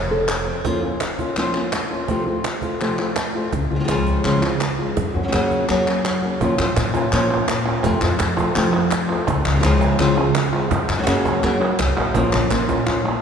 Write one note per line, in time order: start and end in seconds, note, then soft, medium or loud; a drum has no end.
0.00 0.47 F1 loud
0.00 0.65 F2 medium
0.00 0.45 C4 medium
0.00 0.63 F4 medium
0.00 0.10 C5 medium
0.11 0.29 A4 loud
0.28 cajon slap medium
0.28 clap medium
0.47 0.62 C4 medium
0.64 0.82 F3 medium
0.64 0.82 A#3 medium
0.64 0.83 C#4 medium
0.64 0.81 F4 medium
0.64 cajon bass medium
0.83 1.01 A#3 soft
0.83 1.01 C#4 medium
0.83 1.00 F4 medium
1.01 muted nylon-string guitar stroke medium
1.01 cajon slap medium
1.01 clap medium
1.19 1.36 A#3 soft
1.19 1.37 C#4 medium
1.19 1.36 F4 medium
1.19 cajon bass medium
1.36 1.54 F3 medium
1.36 1.54 A#3 medium
1.36 1.55 C#4 medium
1.36 1.53 F4 medium
1.36 clap medium
1.54 1.72 A#3 soft
1.54 1.72 C#4 medium
1.54 1.72 F4 soft
1.54 clap medium
1.72 muted nylon-string guitar stroke medium
1.72 cajon slap loud
1.72 clap medium
1.90 2.09 A#3 soft
1.90 2.08 C#4 soft
1.90 2.08 F4 medium
2.08 2.26 C3 medium
2.08 2.26 F3 medium
2.08 2.26 A3 medium
2.08 2.27 C4 medium
2.08 2.25 F4 medium
2.08 cajon bass medium
2.26 2.44 A3 soft
2.26 2.44 C4 soft
2.26 2.44 F4 medium
2.44 muted nylon-string guitar stroke medium
2.44 cajon slap medium
2.44 clap medium
2.62 2.80 A3 soft
2.62 2.81 C4 medium
2.62 2.80 F4 medium
2.62 cajon bass medium
2.81 2.98 C3 medium
2.81 2.98 F3 medium
2.81 2.98 A3 medium
2.81 2.99 C4 medium
2.81 2.98 F4 medium
2.81 clap medium
2.98 3.16 A3 soft
2.98 3.17 C4 medium
2.98 3.16 F4 medium
2.98 cajon slap soft
2.98 clap medium
3.16 muted nylon-string guitar stroke medium
3.16 cajon slap loud
3.16 clap medium
3.35 3.53 A3 soft
3.35 3.53 C4 soft
3.35 3.52 F4 soft
3.52 3.66 C#2 medium
3.52 muted nylon-string guitar stroke medium
3.52 cajon bass medium
3.71 3.85 C#2 medium
3.71 3.75 G#3 soft
3.71 3.75 C4 soft
3.71 3.75 F4 soft
3.75 3.78 F3 soft
3.75 3.79 C4 medium
3.75 3.80 F4 medium
3.80 3.83 F3 medium
3.80 3.83 G#3 medium
3.80 3.84 C4 medium
3.80 3.84 F4 medium
3.84 3.88 F3 medium
3.84 3.88 G#3 medium
3.84 3.88 C4 medium
3.84 3.88 F4 medium
3.88 4.16 C#2 medium
3.88 4.22 C#3 medium
3.88 4.23 F3 medium
3.88 4.24 G#3 medium
3.88 4.24 C4 medium
3.88 4.24 F4 medium
3.88 cajon slap medium
3.88 clap medium
4.07 cajon bass medium
4.23 4.41 C#3 medium
4.23 4.79 C#3 medium
4.23 4.42 F3 medium
4.23 4.42 G#3 medium
4.23 4.42 C4 medium
4.23 4.41 F4 medium
4.23 clap medium
4.42 4.60 G#3 soft
4.42 4.60 C4 soft
4.42 4.60 F4 medium
4.42 cajon slap soft
4.42 clap medium
4.61 muted nylon-string guitar stroke medium
4.61 cajon slap medium
4.61 clap medium
4.78 4.97 G#3 soft
4.78 4.96 C4 soft
4.78 4.96 F4 medium
4.97 5.11 F#2 medium
4.97 muted nylon-string guitar stroke medium
4.97 cajon bass loud
5.14 5.29 F#2 medium
5.14 5.23 A#3 soft
5.14 5.23 C#4 soft
5.14 5.23 F#4 medium
5.23 5.27 F#3 soft
5.23 5.27 A#3 soft
5.23 5.27 C#4 medium
5.23 5.28 F#4 soft
5.28 5.31 F#3 medium
5.28 5.32 A#3 medium
5.28 5.32 C#4 medium
5.28 5.32 F#4 medium
5.32 5.61 F#2 medium
5.32 5.67 C#3 medium
5.32 5.67 F#3 medium
5.32 5.68 A#3 medium
5.32 5.68 C#4 medium
5.32 5.68 F#4 medium
5.32 cajon slap loud
5.32 clap medium
5.51 cajon bass medium
5.51 cajon slap soft
5.68 5.85 C#3 medium
5.68 5.86 F#3 medium
5.68 6.24 F#3 medium
5.68 5.86 A#3 medium
5.68 5.86 C#4 medium
5.68 5.85 F#4 medium
5.68 clap medium
5.86 6.04 A#3 soft
5.86 6.04 C#4 soft
5.86 6.04 F#4 medium
5.86 clap medium
6.04 muted nylon-string guitar stroke medium
6.04 cajon slap medium
6.04 clap medium
6.22 6.40 A#3 soft
6.22 6.40 C#4 soft
6.22 6.40 F#4 soft
6.40 6.55 A#2 medium
6.40 6.57 F3 medium
6.40 6.58 A#3 medium
6.40 6.58 C#4 medium
6.40 6.56 F4 loud
6.40 cajon bass loud
6.40 clap soft
6.58 6.73 A#2 loud
6.58 6.75 A#3 medium
6.58 6.76 C#4 medium
6.58 6.75 F4 medium
6.58 cajon slap soft
6.58 clap medium
6.76 7.04 A#2 loud
6.76 muted nylon-string guitar stroke medium
6.76 cajon slap loud
6.76 clap medium
6.94 7.11 A#3 soft
6.94 7.12 C#4 medium
6.94 7.11 F4 medium
6.94 cajon bass medium
6.94 clap soft
7.11 7.67 A#2 loud
7.11 7.29 F3 medium
7.11 7.30 A#3 medium
7.11 7.29 C#4 loud
7.11 7.28 F4 medium
7.11 clap medium
7.30 7.47 A#3 medium
7.30 7.47 C#4 medium
7.30 7.47 F4 medium
7.30 clap soft
7.48 muted nylon-string guitar stroke medium
7.48 cajon slap loud
7.48 clap medium
7.65 7.84 A#3 soft
7.65 7.84 C#4 medium
7.65 7.83 F4 medium
7.65 cajon slap soft
7.65 clap medium
7.83 7.98 F2 loud
7.83 8.01 C3 medium
7.83 8.01 F3 medium
7.83 8.01 A3 loud
7.83 8.01 C4 medium
7.83 8.00 F4 loud
7.83 cajon bass loud
7.83 clap medium
8.01 8.16 F2 loud
8.01 8.18 A3 medium
8.01 8.19 C4 medium
8.01 8.19 F4 medium
8.01 clap medium
8.19 8.47 F2 loud
8.19 muted nylon-string guitar stroke medium
8.19 cajon slap loud
8.19 clap medium
8.37 8.55 A3 soft
8.37 8.55 C4 medium
8.37 8.55 F4 medium
8.37 cajon bass medium
8.37 clap soft
8.55 8.73 C3 loud
8.55 8.73 F3 loud
8.55 9.10 F3 loud
8.55 8.73 A3 loud
8.55 8.73 C4 loud
8.55 8.72 F4 medium
8.55 cajon slap soft
8.55 clap medium
8.73 8.91 A3 soft
8.73 8.91 C4 medium
8.73 8.91 F4 medium
8.73 clap soft
8.91 muted nylon-string guitar stroke medium
8.91 cajon slap loud
8.91 clap medium
9.09 9.28 A3 medium
9.09 9.27 C4 medium
9.09 9.27 F4 medium
9.09 clap soft
9.27 9.41 C#2 loud
9.27 muted nylon-string guitar stroke medium
9.27 cajon bass loud
9.27 clap medium
9.46 9.59 C#2 loud
9.46 clap loud
9.55 9.58 F3 medium
9.55 9.59 G#3 medium
9.55 9.59 C4 medium
9.55 9.59 F4 medium
9.60 9.63 F3 medium
9.60 9.63 G#3 medium
9.60 9.63 C4 medium
9.60 9.64 F4 medium
9.60 cajon slap loud
9.60 clap medium
9.64 9.91 C#2 loud
9.64 9.98 C#3 loud
9.64 9.98 F3 medium
9.64 9.99 G#3 medium
9.64 9.99 C4 medium
9.64 9.99 F4 loud
9.81 cajon bass medium
9.81 clap medium
9.99 10.16 C#3 medium
9.99 10.54 C#3 loud
9.99 10.17 F3 medium
9.99 10.17 G#3 medium
9.99 10.17 C4 loud
9.99 10.16 F4 loud
9.99 clap medium
10.17 10.35 G#3 medium
10.17 10.35 C4 medium
10.17 10.34 F4 medium
10.17 clap soft
10.35 muted nylon-string guitar stroke medium
10.35 cajon slap loud
10.35 clap medium
10.52 10.71 G#3 soft
10.52 10.71 C4 medium
10.52 10.70 F4 medium
10.52 clap medium
10.71 10.85 F#2 medium
10.71 muted nylon-string guitar stroke medium
10.71 cajon bass loud
10.71 clap medium
10.89 11.03 F#2 loud
10.89 cajon slap soft
10.89 clap medium
10.98 11.01 F#3 medium
10.98 11.02 A#3 medium
10.98 11.02 C#4 medium
10.98 11.02 F#4 medium
11.02 11.06 F#3 medium
11.02 11.06 A#3 medium
11.02 11.07 C#4 medium
11.02 11.07 F#4 medium
11.07 11.34 F#2 loud
11.07 11.41 C#3 medium
11.07 11.42 F#3 medium
11.07 11.42 A#3 medium
11.07 11.43 C#4 medium
11.07 11.43 F#4 loud
11.07 cajon slap loud
11.07 clap medium
11.25 cajon bass medium
11.25 clap soft
11.42 11.60 C#3 medium
11.42 11.60 F#3 medium
11.42 11.70 F#3 loud
11.42 11.60 A#3 medium
11.42 11.60 C#4 medium
11.42 11.59 F#4 medium
11.42 cajon slap soft
11.42 clap medium
11.60 11.78 A#3 soft
11.60 11.79 C#4 medium
11.60 11.78 F#4 medium
11.60 clap medium
11.79 11.95 C2 medium
11.79 muted nylon-string guitar stroke medium
11.79 cajon slap loud
11.79 clap medium
11.97 12.13 A#1 medium
11.97 12.14 A#3 medium
11.97 12.15 C#4 medium
11.97 12.14 F#4 medium
11.97 clap medium
12.14 12.29 A#1 loud
12.14 12.49 F3 medium
12.14 12.50 A#3 medium
12.14 12.51 C#4 medium
12.14 12.51 F4 medium
12.14 cajon bass loud
12.14 clap medium
12.33 12.47 A#1 loud
12.33 clap medium
12.50 12.79 A#1 loud
12.50 12.68 F3 medium
12.50 12.68 A#3 medium
12.50 12.68 C#4 medium
12.50 12.67 F4 medium
12.50 cajon slap loud
12.50 clap medium
12.68 12.87 A#3 medium
12.68 12.86 C#4 medium
12.68 12.85 F4 medium
12.68 cajon bass medium
12.68 clap medium
12.86 13.22 A#2 medium
12.86 13.03 A#3 soft
12.86 13.04 C#4 medium
12.86 13.04 F4 medium
12.86 cajon slap soft
12.86 clap medium
13.04 muted nylon-string guitar stroke medium
13.04 clap soft